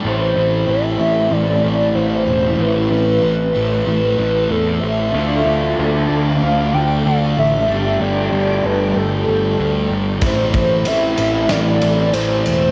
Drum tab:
RD |--------|--------|--------|--------|
SD |--------|--------|--------|--------|
BD |--------|--------|--------|--------|

RD |xxxxxxxx|
SD |----o---|
BD |oo------|